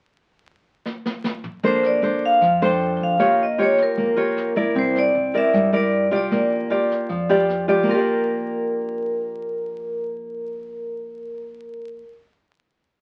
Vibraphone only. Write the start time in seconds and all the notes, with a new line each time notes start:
1.67 C5
1.86 D5
2.25 F5
2.65 G5
2.97 G5
3.03 F5
3.43 D#5
3.63 C#5
3.83 A#4
4.79 C5
4.98 D5
5.38 E5
5.76 D5
6.16 D5
7.91 A#4